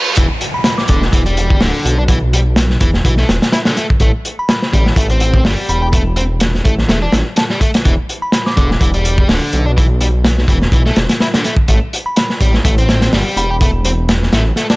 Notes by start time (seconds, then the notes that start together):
Already playing: G3 C4 A4 E5, reverse cymbal
0.17 E1 E3, kick, closed hi-hat, downlifter
0.41 closed hi-hat
0.54 B5
0.64 B5, snare, closed hi-hat
0.78 D6, snare
0.88 E1 D3 D6, kick, closed hi-hat
1.02 snare
1.13 E1 E3, kick, closed hi-hat
1.26 G3, closed hi-hat
1.37 closed hi-hat
1.50 kick
1.61 D1 D3, snare, open hi-hat
1.85 B1, closed hi-hat
1.99 D4
2.08 E3, kick, closed hi-hat
2.33 G3, closed hi-hat
2.56 snare, closed hi-hat
2.70 snare
2.81 E1 E3, kick, closed hi-hat
2.94 snare
3.05 B1 E3, kick, closed hi-hat
3.17 A3, snare
3.29 E1, snare, closed hi-hat
3.42 snare, closed hi-hat
3.52 E4, snare, closed hi-hat
3.65 D3, snare, closed hi-hat
3.77 A3, snare, closed hi-hat
3.90 kick
4.00 A1 A3, kick, closed hi-hat
4.25 closed hi-hat
4.39 B5
4.49 B5, snare, closed hi-hat
4.62 snare
4.73 A1 G3, kick, closed hi-hat
4.86 snare
4.96 A1 A3, kick, closed hi-hat
5.10 C4, closed hi-hat
5.20 closed hi-hat
5.34 kick
5.45 G1 G3, snare, open hi-hat
5.69 E1 B5, closed hi-hat
5.82 G4 B5
5.92 A3, kick, closed hi-hat
6.16 C4, closed hi-hat
6.40 snare, closed hi-hat
6.55 snare
6.65 A1 A3, kick, closed hi-hat
6.79 snare
6.89 E1 A3, snare, closed hi-hat
7.02 D4
7.12 A1, snare, closed hi-hat
7.36 A4, snare, closed hi-hat
7.50 G3, snare
7.61 A3, kick, closed hi-hat
7.74 snare, closed hi-hat
7.85 E1 E3, kick, closed hi-hat
8.09 closed hi-hat
8.22 B5
8.32 B5, snare, closed hi-hat
8.46 D6, snare
8.57 E1 D3 D6, kick, closed hi-hat
8.71 snare
8.81 E1 E3, kick, closed hi-hat
8.94 G3, closed hi-hat
9.05 closed hi-hat
9.18 kick
9.29 D1 D3, snare, open hi-hat
9.53 B1, closed hi-hat
9.66 D4
9.77 E3, kick, closed hi-hat
10.01 G3, closed hi-hat
10.25 snare, closed hi-hat
10.38 snare
10.48 E1 E3, kick, closed hi-hat
10.62 snare
10.72 B1 E3, kick, closed hi-hat
10.86 A3, snare
10.96 E1, snare, closed hi-hat
11.09 snare, closed hi-hat
11.20 E4, snare, closed hi-hat
11.34 D3, snare, closed hi-hat
11.44 A3, snare, closed hi-hat
11.57 kick
11.68 A1 A3, kick, closed hi-hat
11.93 closed hi-hat
12.06 B5
12.16 B5, snare, closed hi-hat
12.30 snare
12.41 A1 G3, kick, closed hi-hat
12.54 snare
12.65 A1 A3, kick, closed hi-hat
12.78 C4, closed hi-hat
12.89 snare, closed hi-hat
13.02 snare, closed hi-hat
13.13 G1 G3, snare, open hi-hat
13.37 E1 B5, closed hi-hat
13.50 G4 B5
13.61 A3, kick, closed hi-hat
13.85 C4, closed hi-hat
14.09 snare, closed hi-hat
14.23 snare
14.33 A1 A3, snare, closed hi-hat
14.56 A3, snare, closed hi-hat
14.70 D4, snare, closed hi-hat